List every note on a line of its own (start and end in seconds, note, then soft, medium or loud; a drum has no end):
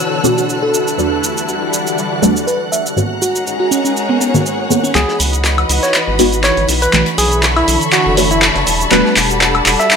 0.00 0.21 B2 medium
0.00 0.72 B2 medium
0.00 1.64 D3 medium
0.00 2.93 D3 medium
0.00 0.21 E3 medium
0.00 0.70 E3 medium
0.00 0.21 A3 medium
0.00 0.21 C#4 medium
0.00 0.21 D4 medium
0.00 0.22 F#4 medium
0.00 4.91 F#4 medium
0.00 2.93 A4 medium
0.00 2.97 A4 medium
0.00 1.64 B4 medium
0.00 0.72 C#5 medium
0.00 0.74 C#5 medium
0.00 1.50 E6 medium
0.00 4.96 F#6 medium
0.00 shaker soft
0.24 0.72 B2 medium
0.24 0.72 E3 medium
0.24 0.72 A3 medium
0.24 0.72 C#4 medium
0.24 0.72 D4 medium
0.24 0.33 F#4 medium
0.24 0.72 F#4 loud
0.24 shaker medium
0.38 0.45 F#4 medium
0.38 shaker soft
0.49 shaker soft
0.62 0.79 A4 medium
0.74 2.94 E3 medium
0.74 2.94 G3 medium
0.74 2.97 E4 medium
0.74 shaker medium
0.88 shaker soft
0.98 2.19 E2 medium
0.98 2.19 G3 medium
0.98 2.19 A3 medium
0.98 2.20 B3 medium
0.98 2.20 D4 medium
0.98 2.20 F#4 medium
0.98 shaker soft
1.03 2.97 G3 medium
1.24 shaker medium
1.37 2.97 D5 medium
1.37 shaker soft
1.49 shaker soft
1.64 7.63 F#5 medium
1.74 shaker medium
1.87 shaker soft
1.98 shaker soft
2.22 2.33 E2 medium
2.22 2.33 G3 medium
2.22 2.33 A3 medium
2.22 2.33 B3 medium
2.22 2.33 D4 medium
2.22 2.33 F#4 loud
2.22 shaker medium
2.37 shaker soft
2.47 2.61 B4 medium
2.47 shaker soft
2.72 2.86 E5 medium
2.72 shaker medium
2.86 shaker soft
2.96 4.18 G#2 medium
2.96 4.18 D#3 medium
2.96 4.93 G#3 medium
2.96 4.18 A#3 medium
2.96 4.18 B3 medium
2.96 4.93 C#4 medium
2.96 4.18 C#4 medium
2.96 4.93 D#4 medium
2.96 4.18 F#4 medium
2.96 4.93 A#4 medium
2.96 shaker soft
3.05 4.95 A#5 medium
3.11 5.59 G#4 medium
3.22 3.44 F#4 medium
3.22 shaker medium
3.36 shaker soft
3.47 shaker soft
3.53 5.75 C#5 medium
3.60 3.69 F#4 medium
3.71 3.80 C#4 medium
3.71 shaker medium
3.85 3.92 C#4 medium
3.85 shaker soft
3.97 shaker soft
4.09 4.17 B3 medium
4.21 shaker medium
4.34 4.67 G#2 medium
4.34 4.67 D#3 medium
4.34 4.68 A#3 medium
4.34 4.68 B3 medium
4.34 4.68 C#4 medium
4.34 4.68 F#4 loud
4.34 shaker soft
4.46 shaker soft
4.70 4.92 G#2 medium
4.70 4.92 D#3 medium
4.70 4.92 A#3 medium
4.70 4.92 B3 medium
4.70 4.92 C#4 medium
4.70 4.93 G#4 medium
4.70 shaker medium
4.84 4.95 C#4 medium
4.84 shaker soft
4.94 5.05 C#2 loud
4.94 6.16 E3 medium
4.94 8.63 E3 medium
4.94 7.63 E3 medium
4.94 6.16 G#3 medium
4.94 6.16 B3 medium
4.94 6.92 D#4 medium
4.94 6.16 D#4 medium
4.94 6.91 F#4 medium
4.94 6.17 F#4 medium
4.94 5.17 G#4 medium
4.94 6.91 B4 medium
4.94 9.97 B5 medium
4.94 clap soft
4.94 closed hi-hat medium
4.94 shaker medium
4.94 shaker soft
5.08 snare medium
5.15 7.63 B4 medium
5.15 6.94 D#5 medium
5.20 5.65 C#2 medium
5.20 open hi-hat loud
5.20 shaker medium
5.33 closed hi-hat soft
5.33 shaker soft
5.44 snare loud
5.44 clap soft
5.44 closed hi-hat medium
5.44 shaker medium
5.44 shaker soft
5.58 closed hi-hat soft
5.58 high woodblock medium
5.69 5.79 C#2 loud
5.69 open hi-hat loud
5.69 shaker medium
5.83 5.96 C#5 medium
5.83 snare medium
5.83 closed hi-hat soft
5.83 shaker soft
5.94 clap soft
5.94 closed hi-hat medium
5.94 shaker medium
5.94 shaker soft
6.08 6.52 G#1 loud
6.19 6.29 E3 medium
6.19 6.29 G#3 medium
6.19 6.29 B3 medium
6.19 6.29 D#4 medium
6.19 6.30 F#4 loud
6.19 open hi-hat medium
6.19 shaker medium
6.32 closed hi-hat medium
6.32 shaker soft
6.43 6.65 C#5 medium
6.43 snare loud
6.43 clap medium
6.43 closed hi-hat medium
6.43 shaker medium
6.43 shaker soft
6.57 6.66 G#1 loud
6.57 closed hi-hat soft
6.68 6.87 B1 medium
6.68 snare soft
6.68 open hi-hat loud
6.68 shaker medium
6.82 7.03 B4 medium
6.82 closed hi-hat soft
6.82 closed hi-hat medium
6.82 shaker soft
6.93 7.03 B1 loud
6.93 9.97 D3 medium
6.93 8.65 D3 medium
6.93 8.14 E3 medium
6.93 8.14 A3 medium
6.93 8.15 C#4 medium
6.93 8.15 D4 medium
6.93 8.15 F#4 medium
6.93 8.65 A4 medium
6.93 8.65 C#5 medium
6.93 clap medium
6.93 closed hi-hat medium
6.93 shaker medium
6.93 shaker soft
7.06 9.57 C#6 medium
7.06 closed hi-hat soft
7.18 7.63 B1 loud
7.18 7.40 G#4 medium
7.18 9.57 E5 medium
7.18 open hi-hat loud
7.18 shaker medium
7.32 closed hi-hat medium
7.32 shaker soft
7.43 snare loud
7.43 clap medium
7.43 closed hi-hat medium
7.43 shaker medium
7.43 shaker soft
7.56 7.78 E4 medium
7.56 snare soft
7.56 closed hi-hat soft
7.56 high woodblock medium
7.68 7.78 B1 loud
7.68 open hi-hat loud
7.68 shaker medium
7.72 9.97 A5 medium
7.81 closed hi-hat soft
7.81 shaker soft
7.92 8.14 F#4 medium
7.92 clap medium
7.92 closed hi-hat medium
7.92 shaker medium
7.92 shaker soft
8.06 8.50 F#1 loud
8.17 8.65 E3 medium
8.17 8.65 A3 medium
8.17 8.66 C#4 medium
8.17 8.66 D4 medium
8.17 8.66 F#4 loud
8.17 snare soft
8.17 open hi-hat loud
8.17 shaker medium
8.31 8.44 E4 medium
8.31 closed hi-hat medium
8.31 shaker soft
8.42 snare loud
8.42 clap medium
8.42 closed hi-hat medium
8.42 shaker medium
8.42 shaker soft
8.55 8.64 F#1 loud
8.55 snare soft
8.55 closed hi-hat soft
8.67 8.86 E1 medium
8.67 9.97 G3 medium
8.67 9.97 F#4 medium
8.67 9.97 A4 medium
8.67 9.97 D5 loud
8.67 open hi-hat loud
8.67 shaker medium
8.76 9.97 G3 medium
8.80 closed hi-hat medium
8.80 shaker soft
8.91 9.02 E1 loud
8.91 9.97 G3 medium
8.91 9.97 A3 medium
8.91 9.97 B3 medium
8.91 9.97 D4 medium
8.91 9.97 F#4 medium
8.91 9.13 B4 medium
8.91 clap medium
8.91 closed hi-hat medium
8.91 shaker medium
8.91 shaker soft
9.05 snare medium
9.10 9.97 F#5 medium
9.16 9.61 E1 loud
9.16 clap medium
9.16 open hi-hat loud
9.16 shaker medium
9.31 shaker soft
9.41 snare loud
9.41 clap medium
9.41 closed hi-hat medium
9.41 shaker medium
9.41 shaker soft
9.55 closed hi-hat soft
9.55 high woodblock medium
9.66 9.76 E1 loud
9.66 clap medium
9.66 open hi-hat loud
9.66 shaker medium
9.79 9.93 E5 medium
9.79 snare soft
9.79 closed hi-hat soft
9.79 shaker soft
9.91 clap medium
9.91 closed hi-hat medium
9.91 shaker medium
9.91 shaker soft